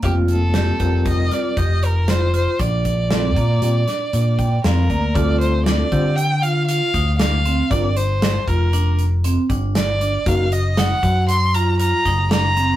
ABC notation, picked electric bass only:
X:1
M:5/4
L:1/8
Q:1/4=117
K:Dphr
V:1 name="Picked electric bass" clef=bass
F,,,3 F,,, F,,, z F,,,4 | B,,,3 B,, B,, z B,,2 F,, D,, | D,,3 D,4 D,,3 | G,,,3 F,,,4 G,,,3 |
_G,,,3 _G,,4 G,,,3 |]